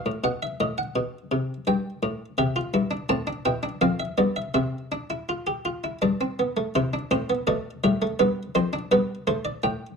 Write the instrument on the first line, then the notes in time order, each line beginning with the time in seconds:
harpsichord
Already playing: F5
0.06 A2
0.24 B2 F#5
0.42 E5
0.60 A2 D#5
0.78 F#5
0.96 B2
1.32 C3
1.67 G2 G5
2.03 A2
2.38 C3 G4 E5
2.56 F4
2.74 G2 E4
2.91 D4
3.09 A2 C4 A5
3.27 D4
3.45 B2 E4 G5
3.63 D4
3.81 F2 C4 F5
4.00 E5
4.18 G2 B3 D5
4.36 E5
4.54 C3 C4 E5
4.92 D4
5.10 E4
5.29 F4
5.47 G4
5.65 F4
5.84 E4
6.02 G2 D4 D5
6.21 C4
6.39 B3
6.57 A3
6.75 C3 E4 C5
6.93 D4
7.11 A2 C4 C5
7.30 B3
7.47 B2 A3 D5
7.84 A2 G3 E5
8.02 A3
8.19 G2 B3 B4
8.55 F2 C4 C5
8.73 D4
8.91 G2 B3 B4
9.27 A3 C5
9.45 D5
9.63 A2 G5